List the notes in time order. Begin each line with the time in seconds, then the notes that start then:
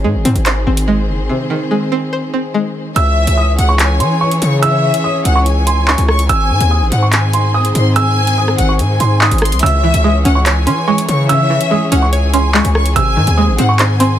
Already playing: C3 D#3 C4 G#4 C5
0.04 G#2 G#3
0.15 G#1
0.25 G#2 C4, closed hi-hat
0.36 G#1, closed hi-hat
0.46 C5, clap, closed hi-hat
0.67 G#1 C4
0.77 closed hi-hat
0.88 G#3
1.08 F#1
1.19 G#1
1.29 C3
1.50 D#3
1.71 G#3
1.92 C4
2.13 C5
2.34 C4
2.54 G#3
2.96 C#2 E3 C#4 G#4 C#5 E5 E6, closed hi-hat
3.27 C#2, closed hi-hat
3.37 D#6
3.59 C#2 F#5, closed hi-hat
3.69 C#6
3.79 G#5, clap, closed hi-hat
4.00 E3 C6, closed hi-hat
4.21 C#6
4.31 closed hi-hat
4.42 C#3 C#6, closed hi-hat
4.62 E5 E6, closed hi-hat
4.94 closed hi-hat
5.04 D#6
5.25 C#2 F#5, closed hi-hat
5.35 C#6
5.46 G#5, closed hi-hat
5.67 C6, closed hi-hat
5.88 C#6, clap
5.98 C#2, closed hi-hat
6.08 C#6, cross-stick
6.19 closed hi-hat
6.29 G#1 D#3 C4 G#4 C5 G#5 E6, closed hi-hat
6.50 G#2
6.60 D#2, closed hi-hat
6.71 D#6
6.81 A1
6.92 G#2 F#5, closed hi-hat
7.02 C#6
7.13 G#5, clap, closed hi-hat
7.33 C6, closed hi-hat
7.54 D#6
7.65 closed hi-hat
7.75 G#2 C6, closed hi-hat
7.96 G#5 E6, closed hi-hat
8.27 closed hi-hat
8.38 D#6
8.48 cross-stick
8.58 G#1 F#5, closed hi-hat
8.69 C#6
8.79 G#2 G#5, closed hi-hat
9.00 G#2 C6, closed hi-hat
9.21 D#6, clap
9.31 G#1, closed hi-hat
9.38 C6, cross-stick, closed hi-hat
9.45 closed hi-hat
9.52 C2, closed hi-hat
9.59 C#2 C#3 E3 C#4 G#4 C#5 E5 E6, closed hi-hat
9.66 closed hi-hat
9.84 E3
9.94 C#2, closed hi-hat
10.04 G#3 D#6
10.25 C#2 C#4 F#5, closed hi-hat
10.35 C#6
10.46 C#5 G#5, clap, closed hi-hat
10.67 E3 C#4 C6, closed hi-hat
10.88 G#3 C#6
10.98 closed hi-hat
11.08 C#3 C#6, closed hi-hat
11.29 C#3 E5 E6, closed hi-hat
11.50 E3
11.61 closed hi-hat
11.71 G#3 D#6
11.92 C#2 C#4 F#5, closed hi-hat
12.02 C#6
12.13 C#5 G#5, closed hi-hat
12.33 C#4 C6, closed hi-hat
12.54 G#3 C#6, clap
12.65 C#2, closed hi-hat
12.75 C#6, cross-stick
12.86 closed hi-hat
12.96 G#1 C3 D#3 C4 C5 G#5 E6, closed hi-hat
13.17 G#2 D#3
13.27 D#2, closed hi-hat
13.37 G#3 D#6
13.48 A1
13.58 G#2 C4 F#5, closed hi-hat
13.69 C#6
13.79 C5 G#5, clap, closed hi-hat
14.00 C4 C6, closed hi-hat